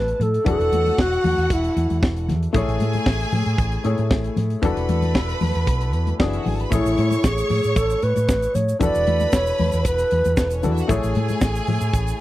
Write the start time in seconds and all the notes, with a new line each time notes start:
Already playing: A1 G#3 A3 E4 B4 C#5 A5
0.08 closed hi-hat
0.20 A2 A4, closed hi-hat, muted conga, low conga
0.34 closed hi-hat
0.44 E1 E3 D4 F#4 A4 F#5, kick, closed hi-hat, low conga
0.49 A4
0.60 E1, closed hi-hat
0.72 E2, closed hi-hat, high conga
0.86 closed hi-hat, high conga
0.98 E1 F#4, kick, snare, muted conga
1.13 closed hi-hat
1.24 E2, open hi-hat, muted conga, high conga, low conga
1.38 E2, closed hi-hat
1.50 E1 E4, kick, closed hi-hat
1.64 closed hi-hat
1.76 E2, closed hi-hat, muted conga
1.90 E2, closed hi-hat, high conga
2.03 E1, kick, snare, muted conga
2.16 closed hi-hat
2.28 E2, snare, closed hi-hat, muted conga, low conga
2.43 closed hi-hat
2.53 A1 A3 E4 G#4 C#5 G#5, kick, closed hi-hat, muted conga, low conga
2.68 A1, closed hi-hat
2.80 A2, closed hi-hat, high conga
2.93 closed hi-hat, high conga
3.06 A1, kick, snare, muted conga
3.20 closed hi-hat
3.32 A2, open hi-hat, muted conga, high conga, low conga
3.46 A2, closed hi-hat
3.58 A1, kick, closed hi-hat
3.72 closed hi-hat
3.84 A2 A3 E4 G#4 C#5, closed hi-hat, muted conga
3.98 A2, closed hi-hat, high conga
4.11 A1, kick, snare, muted conga
4.24 closed hi-hat
4.36 A2, snare, closed hi-hat, muted conga, low conga
4.50 closed hi-hat
4.62 E1 E3 D4 F#4 A4 B4 B5, kick, closed hi-hat, muted conga, low conga
4.77 E1, closed hi-hat
4.89 E2, closed hi-hat, muted conga, high conga
5.02 closed hi-hat, high conga
5.15 E1, kick, snare, muted conga
5.29 closed hi-hat
5.41 E2, open hi-hat, muted conga, high conga, low conga
5.55 E2, closed hi-hat
5.67 B1, kick, closed hi-hat, muted conga
5.81 closed hi-hat
5.93 E2, closed hi-hat
6.07 closed hi-hat, high conga
6.19 F#1 E3 D4 F#4 G#4 D5, kick, snare
6.29 E4 E5
6.33 closed hi-hat
6.38 F#4 F#5
6.46 G#1 G#4 G#5, open hi-hat, muted conga, low conga
6.55 A4 A5
6.60 B4 B5, closed hi-hat
6.70 A1 A3 E4 G#4 C#5 C#6, kick, closed hi-hat, low conga, shaker
6.86 A1, closed hi-hat, shaker
6.98 A2, closed hi-hat, high conga
7.11 closed hi-hat, high conga, shaker
7.24 A1 G#4, kick, snare, shaker
7.38 closed hi-hat, shaker
7.49 A2, open hi-hat, muted conga, high conga, low conga
7.64 A2, closed hi-hat, shaker
7.76 A1 A4, kick, closed hi-hat, muted conga, shaker
7.90 closed hi-hat, shaker
8.02 A2 B4, closed hi-hat, muted conga
8.16 A2, closed hi-hat, high conga, shaker
8.28 A1, kick, snare, muted conga, shaker
8.42 closed hi-hat, shaker
8.55 A2 C#5, closed hi-hat, low conga, shaker
8.69 closed hi-hat, shaker
8.79 E1 E3 D4 F#4 A4 B4 D5 B5, kick, closed hi-hat, muted conga, low conga, shaker
8.95 E1, closed hi-hat, shaker
9.07 E2, closed hi-hat, muted conga, high conga
9.20 closed hi-hat, high conga, shaker
9.32 E1 C#5, kick, snare, muted conga, shaker
9.46 closed hi-hat, shaker
9.58 E2, open hi-hat, high conga, low conga
9.72 E2, closed hi-hat, shaker
9.80 C#5
9.85 E1 B4, kick, closed hi-hat, shaker
9.98 closed hi-hat, shaker
10.11 E2, closed hi-hat, muted conga
10.24 E2, closed hi-hat, high conga, shaker
10.37 E1 A3 A4, kick, snare, shaker
10.45 B3 B4
10.51 closed hi-hat, shaker
10.55 C#4 C#5
10.62 E2 E3 D4 F#4 A4 D5, closed hi-hat, muted conga, low conga, shaker
10.71 E4 E5
10.77 F#4 F#5, closed hi-hat, shaker
10.88 A1 A3 E4 G#4 C#5 G#5, kick, closed hi-hat, muted conga, low conga, shaker
11.03 A1, closed hi-hat, shaker
11.15 A2, closed hi-hat, muted conga, high conga
11.28 closed hi-hat, high conga, shaker
11.41 A1, kick, snare, muted conga, shaker
11.55 closed hi-hat, shaker
11.67 A2, open hi-hat, muted conga, high conga, low conga
11.81 A2, closed hi-hat, shaker
11.93 A1, kick, closed hi-hat, shaker
12.07 closed hi-hat, shaker